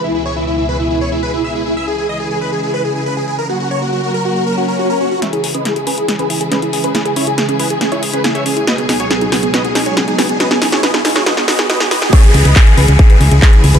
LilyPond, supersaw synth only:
\new Staff \with { instrumentName = "Supersaw synth" } { \time 4/4 \key cis \minor \tempo 4 = 139 e'16 e'16 cis''16 e'16 e'16 e'16 b'16 e'16 e'16 cis''16 e'16 b'16 e'16 e''16 e'16 e'16 | e''16 gis'16 gis'16 dis''16 gis'16 gis'16 b'16 gis'16 gis'16 b'16 gis'16 gis'16 b'16 gis'16 gis'16 ais'16 | fis'16 fis'16 cis''16 fis'16 fis'16 fis'16 ais'16 fis'16 fis'16 ais'16 fis'16 ais'16 fis'16 ais'16 fis'16 fis'16 | <cis'' e''>16 gis'16 gis'16 <b' dis''>16 gis'16 gis'16 <gis' b'>16 gis'16 gis'16 <gis' b'>16 gis'16 gis'16 <gis' b'>16 gis'16 gis'16 <gis' b'>16 |
gis'16 gis'16 <e' cis''>16 gis'16 gis'16 gis'16 <gis' b'>16 gis'16 gis'16 <e' cis''>16 gis'16 <gis' b'>16 gis'16 <cis'' e''>16 gis'16 gis'16 | <b' dis''>16 gis'16 gis'16 <gis' cis''>16 gis'16 gis'16 <b gis'>16 gis'16 <b' dis''>16 gis'16 gis'16 <gis' cis''>16 gis'16 gis'16 <b gis'>16 gis'16 | <b' dis''>16 gis'16 gis'16 <gis' cis''>16 <b' dis''>16 gis'16 gis'16 <gis' cis''>16 <b' dis''>16 gis'16 <b' dis''>16 gis'16 <b' dis''>16 gis'16 <b' dis''>16 gis'16 | <cis'' e''>16 gis'16 gis'16 <b' dis''>16 gis'16 gis'16 <gis' b'>16 gis'16 gis'16 <gis' b'>16 gis'16 gis'16 <gis' b'>16 gis'16 gis'16 <gis' b'>16 | }